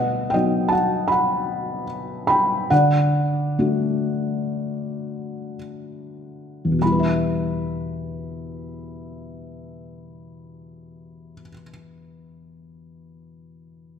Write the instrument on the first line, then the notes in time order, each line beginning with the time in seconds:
felt piano
Already playing: B2 B4 D#5 F#5
0.30 B3 D#4 D#5 G5
0.34 F#3
0.68 A5
0.72 F#5
1.08 B5
1.12 F#5
2.27 G5 B5
2.70 D3 D5 F#5
3.59 A3 D4 F#4
6.65 E2
6.72 B2
6.79 G3 B5
6.85 E4
6.92 B4
6.99 E5